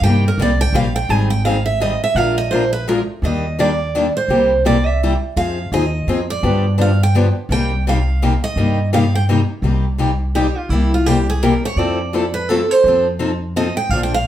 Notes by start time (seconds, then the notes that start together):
0.01 G2 C3 G3 A#3 D#4 G4 G5
0.28 A#4
0.38 C2 C3 G3 A#3 D#4 G4
0.42 D5
0.61 G5
0.73 A#1 C3 G3 A#3 D#4 G4 F5
0.96 G5
1.09 G#1 D#3 G3 C4 D#4 G#4 G#5
1.30 G5
1.45 D#3 G3 C4 D#4 G#4 F5
1.66 E5
1.80 D#3 G3 C4 D#4 G#4 D#5
2.04 E5
2.15 A#1 F3 G#3 D4 F4 A#4 F5
2.38 D#5
2.51 F3 G#3 D4 F4 A#4 C5
2.73 B4
2.88 F3 G#3 D4 F4 A#4
3.22 D#2 D#3 G3 A#3 D4 G4 D#5
3.59 D#3 G3 A#3 D4 G4 D5
3.95 D#3 G3 A#3 D4 G4
4.17 C5
4.28 C2 C3 G3 A#3 E4 G4
4.65 C3 G3 A#3 E4 G4 D5
4.86 E5
5.03 C3 G3 A#3 E4 G4
5.36 F2 F3 C4 D#4 G#4 F5
5.72 D#2 F3 C4 D#4 G#4 D#5
6.07 F2 F3 C4 D#4 G#4
6.30 D5
6.43 G2 D3 F3 B3 D4 G4
6.78 D3 F3 B3 D4 G4 F5
7.03 G5
7.15 D3 F3 B3 D4 G4
7.49 C2 C3 G3 A#3 D#4 G4 G5
7.87 C3 G3 A#3 D#4 G4 F5
8.22 C3 G3 A#3 D#4 G4
8.44 D#5
8.56 G2 C3 G3 A#3 D#4 G4
8.93 C3 G3 A#3 D#4 G4 F5
9.15 G5
9.29 C3 G3 A#3 D#4 G4
9.62 C2 C3 G3 A#3 D#4 G4
9.98 C3 G3 A#3 D#4 G4
10.35 C3 G3 A#3 D#4 G4
10.58 F4
10.69 C2 C3 G3 A#3 E4 G4
10.94 F4
11.06 C3 G3 A#3 E4 G4
11.30 G#4
11.42 C3 G3 A#3 E4 G4 A#4
11.65 C#5
11.76 F2 F3 A3 C4 E4 A4 D5
12.13 F3 A3 C4 E4 A4
12.34 B4
12.49 F3 A3 C4 E4 A4
12.71 C5
12.84 F2 F3 C4 D#4
12.88 A4
13.19 F3 C4 D#4 A4
13.56 F3 C4 D#4 A4 D#5
13.77 G5
13.89 A#1 D3 F3 A#3 D4 F5
13.94 A4
14.03 G5
14.14 F5